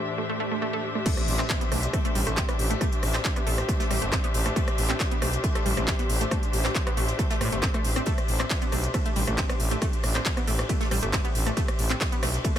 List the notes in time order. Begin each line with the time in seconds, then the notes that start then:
Already playing: A2 E3 A3 D4 G4 C5 E5
0.18 A3, swell
0.29 A3
0.40 A3
0.51 A3
0.62 A3
0.73 A4
0.95 A3
1.05 A3, kick, closed hi-hat, crash, ride, impact
1.17 cross-stick, closed hi-hat
1.28 A1, open hi-hat, ride
1.39 C4, cross-stick, clap, closed hi-hat
1.49 kick, snare, clap, closed hi-hat, ride
1.61 B3, closed hi-hat
1.71 B1 A3, cross-stick, open hi-hat, ride
1.83 closed hi-hat
1.93 A3, kick, cross-stick, closed hi-hat, ride
2.05 A3, closed hi-hat
2.15 A1 G3, open hi-hat, ride
2.27 A1 A3, cross-stick, closed hi-hat
2.37 C4, kick, snare, clap, closed hi-hat, ride
2.49 B3, cross-stick, snare, closed hi-hat
2.59 A1, open hi-hat, ride
2.70 A3, closed hi-hat
2.81 A3, kick, cross-stick, closed hi-hat, ride
2.92 closed hi-hat, ride
3.02 A1, cross-stick, open hi-hat, ride
3.14 C4, snare, clap, closed hi-hat
3.25 kick, snare, clap, closed hi-hat, ride
3.36 B3, cross-stick, closed hi-hat
3.47 A1 A3, open hi-hat, ride
3.58 cross-stick, snare, closed hi-hat
3.69 A3, kick, closed hi-hat, ride
3.80 A3, snare, closed hi-hat
3.90 A1 G3, cross-stick, open hi-hat, ride
4.02 G1 A3, closed hi-hat
4.12 C4, kick, cross-stick, snare, clap, closed hi-hat, ride
4.24 B3, closed hi-hat
4.34 A1, snare, open hi-hat, ride
4.46 A3, cross-stick, closed hi-hat
4.56 A3, kick, closed hi-hat, ride
4.68 cross-stick, closed hi-hat
4.78 A1, open hi-hat, ride
4.89 C4, clap, closed hi-hat
5.00 kick, cross-stick, snare, clap, closed hi-hat, ride
5.11 B3, closed hi-hat
5.22 B1 A3, cross-stick, open hi-hat, ride
5.33 closed hi-hat
5.44 A3, kick, closed hi-hat, ride
5.55 A3, cross-stick, closed hi-hat
5.66 A1 G3, open hi-hat, ride
5.77 A1 A3, cross-stick, closed hi-hat
5.87 C4, kick, snare, clap, closed hi-hat, ride
5.99 B3, snare, closed hi-hat
6.09 A1, open hi-hat, ride
6.21 A3, closed hi-hat
6.31 A3, kick, cross-stick, closed hi-hat, ride
6.42 closed hi-hat, ride
6.53 A1, open hi-hat, ride
6.64 C4, cross-stick, snare, clap, closed hi-hat
6.75 kick, snare, clap, closed hi-hat, ride
6.87 B3, cross-stick, closed hi-hat
6.97 A1 A3, open hi-hat, ride
7.08 snare, closed hi-hat
7.19 A3, kick, cross-stick, closed hi-hat, ride
7.30 A3, snare, closed hi-hat
7.41 A2 A3, cross-stick, open hi-hat, ride
7.52 G1 A3, closed hi-hat
7.62 C4, kick, snare, clap, closed hi-hat, ride
7.74 A3, cross-stick, closed hi-hat
7.84 A1, snare, open hi-hat, ride
7.96 C4, cross-stick, closed hi-hat
8.05 A3, kick, closed hi-hat, ride
8.18 cross-stick, closed hi-hat
8.28 A1, open hi-hat, ride
8.40 C4, cross-stick, clap, closed hi-hat
8.50 kick, snare, clap, closed hi-hat, ride
8.62 B3, closed hi-hat
8.72 B1 A3, cross-stick, open hi-hat, ride
8.84 closed hi-hat
8.94 A3, kick, cross-stick, closed hi-hat, ride
9.06 A3, closed hi-hat
9.16 A1 G3, open hi-hat, ride
9.27 A1 A3, cross-stick, closed hi-hat
9.38 C4, kick, snare, clap, closed hi-hat, ride
9.49 B3, cross-stick, snare, closed hi-hat
9.60 A1, open hi-hat, ride
9.71 A3, closed hi-hat
9.81 A3, kick, cross-stick, closed hi-hat, ride
9.93 closed hi-hat, ride
10.03 A1, cross-stick, open hi-hat, ride
10.15 C4, snare, clap, closed hi-hat
10.25 kick, snare, clap, closed hi-hat, ride
10.37 B3, cross-stick, closed hi-hat
10.47 A1 A3, open hi-hat, ride
10.58 cross-stick, snare, closed hi-hat
10.69 A3, kick, closed hi-hat, ride
10.81 A3, snare, closed hi-hat
10.91 A1 G3, cross-stick, open hi-hat, ride
11.03 G1 A3, closed hi-hat
11.12 C4, kick, cross-stick, snare, clap, closed hi-hat, ride
11.25 B3, closed hi-hat
11.35 A1, snare, open hi-hat, ride
11.46 A3, cross-stick, closed hi-hat
11.57 A3, kick, closed hi-hat, ride
11.68 cross-stick, closed hi-hat
11.79 A1, open hi-hat, ride
11.90 C4, clap, closed hi-hat
12.01 kick, cross-stick, snare, clap, closed hi-hat, ride
12.12 B3, closed hi-hat
12.22 B1 A3, cross-stick, snare, open hi-hat, ride
12.34 snare, closed hi-hat
12.44 A3, kick, closed hi-hat, ride
12.56 A3